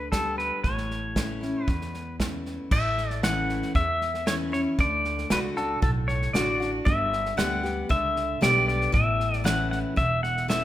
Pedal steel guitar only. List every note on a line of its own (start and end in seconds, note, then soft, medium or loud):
0.12 0.36 A4 medium
0.38 0.65 B4 medium
0.64 1.65 C#5 medium
1.65 2.15 B4 medium
2.72 3.20 E5 loud
3.24 3.72 F#5 loud
3.76 4.29 E5 loud
4.27 4.34 C#5 loud
4.53 4.60 C#5 medium
4.80 5.28 D5 loud
5.32 5.39 B4 medium
5.57 5.81 A4 medium
5.83 5.90 A4 medium
6.08 6.32 C#5 loud
6.33 6.70 D5 loud
6.85 7.39 E5 loud
7.38 7.90 F#5 loud
7.91 8.44 E5 loud
8.43 8.67 D5 loud
8.68 8.92 D5 loud
8.94 9.36 E5 loud
9.36 9.47 D5 loud
9.45 9.70 F#5 loud
9.71 9.78 F#5 loud
9.97 10.21 E5 loud
10.23 10.47 F#5 loud
10.50 10.64 E5 loud